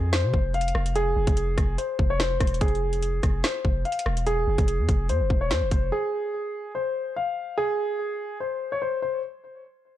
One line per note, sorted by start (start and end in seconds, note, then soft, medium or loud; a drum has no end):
0.00 0.25 F2 loud
0.13 0.52 C5 medium
0.13 snare loud
0.13 closed hi-hat medium
0.24 0.33 C3 loud
0.34 0.73 F1 loud
0.34 kick medium
0.54 0.93 F5 medium
0.54 closed hi-hat medium
0.61 closed hi-hat medium
0.68 closed hi-hat medium
0.75 1.15 F1 loud
0.75 cross-stick loud
0.86 closed hi-hat medium
0.96 1.74 G#4 loud
0.96 closed hi-hat medium
1.16 1.27 F1 loud
1.27 1.56 F1 loud
1.27 kick loud
1.27 closed hi-hat medium
1.37 closed hi-hat medium
1.58 1.77 F1 loud
1.58 kick medium
1.58 cross-stick medium
1.58 closed hi-hat medium
1.78 2.08 C5 medium
1.78 closed hi-hat medium
1.99 2.39 F1 loud
1.99 kick medium
2.10 2.18 C#5 medium
2.20 2.36 C5 medium
2.20 snare loud
2.40 2.60 E1 loud
2.40 2.57 C5 medium
2.40 kick loud
2.40 cross-stick loud
2.40 closed hi-hat medium
2.47 closed hi-hat medium
2.54 closed hi-hat medium
2.61 3.21 F1 loud
2.61 3.40 G#4 loud
2.61 kick loud
2.61 closed hi-hat medium
2.68 closed hi-hat medium
2.75 closed hi-hat soft
2.93 closed hi-hat medium
3.02 closed hi-hat medium
3.23 3.43 F1 loud
3.23 kick loud
3.23 cross-stick medium
3.23 closed hi-hat medium
3.44 3.83 C5 medium
3.44 snare loud
3.44 closed hi-hat medium
3.65 3.84 F1 loud
3.65 kick medium
3.85 4.24 F5 medium
3.85 closed hi-hat medium
3.92 closed hi-hat medium
3.99 closed hi-hat medium
4.06 4.46 E1 loud
4.06 cross-stick loud
4.17 closed hi-hat medium
4.27 5.05 G#4 loud
4.27 closed hi-hat medium
4.47 4.58 F1 loud
4.58 4.80 F1 loud
4.58 kick loud
4.58 closed hi-hat medium
4.68 closed hi-hat medium
4.79 4.88 F2 loud
4.89 5.11 F1 loud
4.89 kick medium
4.89 closed hi-hat medium
5.09 5.22 F2 loud
5.09 5.39 C5 medium
5.09 closed hi-hat medium
5.20 5.30 F1 loud
5.30 5.52 E1 loud
5.30 kick medium
5.41 5.49 C#5 medium
5.51 5.63 F2 loud
5.51 5.67 C5 medium
5.51 snare loud
5.62 5.71 E1 loud
5.71 5.91 F1 loud
5.71 5.88 C5 medium
5.71 kick loud
5.71 closed hi-hat medium
5.92 6.71 G#4 loud
6.75 7.14 C5 medium
7.16 7.55 F5 medium
7.58 8.36 G#4 loud
8.40 8.70 C5 medium
8.72 8.80 C#5 medium
8.82 8.98 C5 medium
9.02 9.19 C5 medium